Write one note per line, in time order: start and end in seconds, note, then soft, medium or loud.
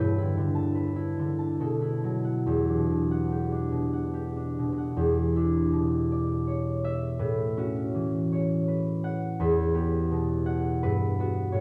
0.00 1.61 G2 medium
0.00 0.17 E4 medium
0.00 0.74 B4 medium
0.00 1.61 G5 medium
0.18 0.94 E4 soft
0.22 0.36 D3 soft
0.37 1.18 D3 medium
0.55 1.38 A5 medium
0.75 4.65 B4 medium
0.96 1.80 E4 medium
1.19 1.63 D3 soft
1.39 2.48 A5 soft
1.60 2.49 B2 medium
1.60 2.49 A4 medium
1.81 5.34 E4 soft
2.04 5.03 F#3 soft
2.24 3.10 F#5 medium
2.46 4.96 E2 medium
2.46 3.30 G4 soft
2.69 3.50 D4 soft
2.77 2.89 B2 soft
2.90 3.71 B2 soft
3.11 3.92 F#5 medium
3.31 4.12 G4 soft
3.52 4.35 D4 soft
3.72 4.58 B2 soft
3.93 4.77 F#5 soft
4.14 4.96 G4 soft
4.36 5.35 D4 soft
4.59 4.71 B2 soft
4.72 5.01 B2 soft
4.78 5.01 F#5 soft
4.97 7.24 E2 medium
4.97 7.24 G4 medium
5.36 7.25 D4 medium
5.36 9.26 E4 medium
5.72 7.24 B2 soft
6.12 7.25 D5 medium
6.47 7.10 C#5 soft
6.84 10.74 E5 medium
7.19 9.40 A2 medium
7.19 8.67 B4 medium
7.57 9.41 C#4 soft
7.57 11.19 F#4 medium
7.95 9.41 E3 soft
8.32 9.42 C#5 medium
8.68 9.28 B4 soft
9.04 10.45 F#5 medium
9.40 10.85 E2 medium
9.40 10.82 B4 medium
9.74 11.17 B3 soft
9.74 11.55 G4 medium
10.11 10.85 B2 medium
10.46 11.61 F#5 medium
10.83 11.56 G2 medium
10.83 11.61 B4 medium
11.19 11.61 B3 medium
11.19 11.61 F#4 medium
11.52 11.61 A2 medium
11.52 11.61 C#5 medium